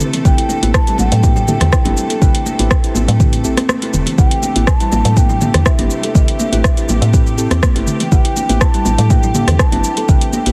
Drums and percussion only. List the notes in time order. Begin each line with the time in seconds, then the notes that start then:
0.00 mid tom, cabasa
0.13 closed hi-hat, muted conga, cabasa
0.25 kick, mid tom, cabasa
0.38 closed hi-hat
0.49 muted conga, high conga, cabasa
0.63 closed hi-hat, high conga, cabasa
0.74 kick, cross-stick, cabasa
0.87 closed hi-hat, cabasa
0.98 muted conga, high conga, low conga, cabasa
1.12 closed hi-hat, low conga, cabasa
1.23 kick, high conga, cabasa
1.36 muted conga, low conga, cabasa
1.48 mid tom, high conga, cabasa
1.60 cross-stick, closed hi-hat, mid tom, muted conga, cabasa
1.73 kick, cross-stick, cabasa
1.85 closed hi-hat, muted conga, high conga, low conga
1.97 cabasa
2.10 closed hi-hat, muted conga, cabasa
2.22 kick, mid tom, cabasa
2.35 closed hi-hat
2.46 muted conga, high conga, cabasa
2.59 closed hi-hat, high conga, cabasa
2.71 kick, cross-stick, cabasa
2.84 closed hi-hat, cabasa
2.95 muted conga, high conga, low conga, cabasa
3.08 closed hi-hat, low conga, cabasa
3.20 kick, mid tom, cabasa
3.33 closed hi-hat, muted conga, cabasa
3.44 cabasa
3.57 cross-stick, closed hi-hat, muted conga, high conga, cabasa
3.69 cross-stick, high conga, cabasa
3.82 closed hi-hat, muted conga
3.93 mid tom, cabasa
4.06 closed hi-hat, muted conga, cabasa
4.18 kick, mid tom, cabasa
4.31 closed hi-hat
4.43 muted conga, high conga, cabasa
4.56 closed hi-hat, high conga, cabasa
4.67 kick, cross-stick, cabasa
4.80 closed hi-hat, cabasa
4.92 muted conga, high conga, low conga, cabasa
5.05 closed hi-hat, low conga, cabasa
5.17 kick, high conga, cabasa
5.30 muted conga, low conga, cabasa
5.41 mid tom, high conga, cabasa
5.54 cross-stick, closed hi-hat, mid tom, muted conga, cabasa
5.66 kick, cross-stick, cabasa
5.79 closed hi-hat, muted conga, high conga, low conga
5.90 cabasa
6.03 closed hi-hat, muted conga, cabasa
6.15 kick, mid tom, cabasa
6.28 closed hi-hat
6.40 muted conga, high conga, cabasa
6.53 closed hi-hat, high conga, cabasa
6.64 kick, cross-stick, cabasa
6.77 closed hi-hat, cabasa
6.89 muted conga, high conga, low conga, cabasa
7.02 closed hi-hat, cabasa
7.14 kick, cabasa
7.27 muted conga, cabasa
7.38 cabasa
7.50 cross-stick, closed hi-hat, muted conga, high conga, cabasa
7.63 kick, cross-stick, high conga, cabasa
7.76 closed hi-hat, muted conga
7.87 mid tom, cabasa
8.00 closed hi-hat, muted conga, cabasa
8.12 kick, mid tom, cabasa
8.25 closed hi-hat
8.36 muted conga, high conga, cabasa
8.49 closed hi-hat, high conga, cabasa
8.61 kick, cross-stick, muted conga, cabasa
8.74 closed hi-hat, cabasa
8.85 muted conga, high conga, low conga, cabasa
8.98 closed hi-hat, low conga, cabasa
9.10 kick, high conga, cabasa
9.23 muted conga, low conga, cabasa
9.35 mid tom, high conga, cabasa
9.48 cross-stick, closed hi-hat, mid tom, cabasa
9.59 kick, cross-stick, cabasa
9.72 closed hi-hat, muted conga, high conga, low conga
9.84 cabasa
9.97 closed hi-hat, muted conga, cabasa
10.08 kick, mid tom, cabasa
10.21 closed hi-hat, cabasa
10.33 muted conga, high conga, cabasa
10.46 closed hi-hat, high conga, cabasa